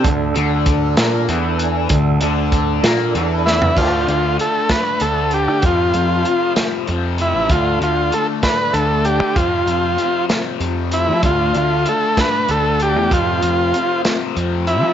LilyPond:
<<
  \new Staff \with { instrumentName = "Tonewheel organ" } { \time 6/8 \key d \minor \tempo 4. = 64 <d' a'>2.~ | <d' a'>2. | r2. | r2. |
r2. | r2. | r2. | r2. | }
  \new Staff \with { instrumentName = "Transistor combo organ" } { \time 6/8 \key d \minor r2. | r2 r8 e'8 | f'8 f'8 a'8 b'8 a'8 g'8 | f'4. r4 e'8 |
f'8 f'8 a'8 b'8 a'8 g'8 | f'4. r4 e'8 | f'8 f'8 a'8 b'8 a'8 g'8 | f'4. r4 e'8 | }
  \new Staff \with { instrumentName = "Distorted electric guitar" } { \clef bass \time 6/8 \key d \minor d8 d4 bes8 e4 | d8 d4 bes8 e4 | <d a d'>8 <a d'>8 <d a d'>8 <a d'>8 <d a d'>8 <a d'>8 | <f, c f>8 <c f>8 <f, c f>8 <c f>8 <f, c f>8 <c f>8 |
<d a d'>8 <a d'>8 <d a d'>8 <a d'>8 <d a d'>8 <a d'>8 | <f, c f>8 <c f>8 <f, c f>8 <c f>8 <f, c f>8 <c f>8 | <d a d'>8 <a d'>8 <d a d'>8 <a d'>8 <d a d'>8 <a d'>8 | <f, c f>8 <c f>8 <f, c f>8 <c f>8 <f, c f>8 <c f>8 | }
  \new Staff \with { instrumentName = "Picked electric bass" } { \clef bass \time 6/8 \key d \minor d,8 d,4 bes,8 e,4 | d,8 d,4 bes,8 e,4 | d,8 d,8 r4 d,8. d16 | f,8 f,8 r4 f,8. a,,16 |
d,8 d,8 r4 d,8. d16 | f,8 f,8 r4 f,8. f16 | d,8 d,8 r4 d,8. e,16 | f,8 f,8 r4 f,8. f16 | }
  \new DrumStaff \with { instrumentName = "Drums" } \drummode { \time 6/8 <hh bd>8 hh8 <hh bd>8 <hh sn>8 hh8 hh8 | <hh bd>8 hh8 <hh bd>8 <hh sn>8 hh8 sn16 tomfh16 | <cymc bd>8 hh8 hh8 <hh bd sn>8 hh8 hh8 | <hh bd>8 hh8 hh8 <hh sn>8 hh8 hh8 |
<hh bd>8 hh8 hh8 <hh bd sn>8 hh8 hh8 | <hh bd>8 hh8 hh8 <hh sn>8 hh8 hh8 | <hh bd>8 hh8 hh8 <hh bd sn>8 hh8 hh8 | <hh bd>8 hh8 hh8 <hh sn>8 hh8 hh8 | }
>>